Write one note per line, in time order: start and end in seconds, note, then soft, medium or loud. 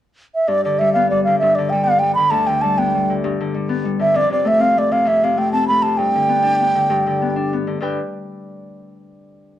0.35 0.49 E5 medium
0.48 1.41 G2 medium
0.48 0.64 D5 medium
0.65 1.26 D3 soft
0.65 0.80 D5 medium
0.79 1.10 G3 medium
0.79 0.93 E5 medium
0.93 1.85 B3 medium
0.93 1.09 F5 medium
1.10 1.30 G3 medium
1.10 1.23 D5 medium
1.24 1.57 D3 soft
1.24 1.38 F5 medium
1.38 2.37 G2 medium
1.38 1.56 E5 medium
1.55 2.16 D3 medium
1.55 1.71 D5 medium
1.69 2.02 G3 medium
1.69 1.85 G5 medium
1.84 2.78 B3 soft
1.84 2.00 F5 medium
1.99 2.22 G3 soft
1.99 2.14 G5 medium
2.15 2.48 D3 soft
2.15 2.32 B5 medium
2.31 3.29 D2 medium
2.31 2.48 A5 medium
2.47 3.08 D3 soft
2.47 2.63 G5 medium
2.62 2.94 G3 medium
2.62 2.80 A5 medium
2.78 3.68 B3 medium
2.78 3.13 G5 medium
2.95 3.13 G3 soft
3.10 3.39 D3 soft
3.24 4.20 G2 medium
3.40 3.98 D3 medium
3.54 3.84 G3 soft
3.69 4.36 B3 medium
3.85 4.05 G3 soft
3.99 4.20 D3 medium
3.99 4.18 E5 medium
4.14 5.04 F2 medium
4.14 4.32 D5 loud
4.30 4.90 C3 soft
4.30 4.49 D5 medium
4.45 4.77 A3 medium
4.45 4.62 E5 medium
4.59 5.52 C4 medium
4.59 4.80 F5 medium
4.77 5.37 A3 soft
4.77 4.94 D5 medium
4.92 5.22 C3 soft
4.92 5.09 F5 medium
5.05 6.03 F2 medium
5.05 5.26 E5 medium
5.23 5.83 C3 soft
5.23 5.40 F5 medium
5.37 5.69 A3 soft
5.37 5.52 G5 medium
5.52 6.35 C4 soft
5.52 5.67 A5 medium
5.68 9.03 A3 soft
5.68 5.84 B5 medium
5.82 6.03 C3 soft
5.82 5.99 A5 medium
5.97 6.89 G2 medium
5.97 7.52 G5 loud
6.15 6.74 D3 soft
6.29 6.43 B3 medium
6.43 6.60 D4 medium
6.60 6.75 B3 soft
6.75 7.06 D3 soft
6.90 7.80 G2 medium
7.07 7.66 D3 soft
7.22 7.35 B3 soft
7.36 7.52 D4 medium
7.53 7.67 B3 soft
7.67 7.80 D3 soft
7.81 7.97 G2 soft
7.81 7.97 D3 soft
7.81 7.97 D4 soft
7.81 7.97 G4 soft
7.81 7.97 B4 soft
7.81 7.98 G5 soft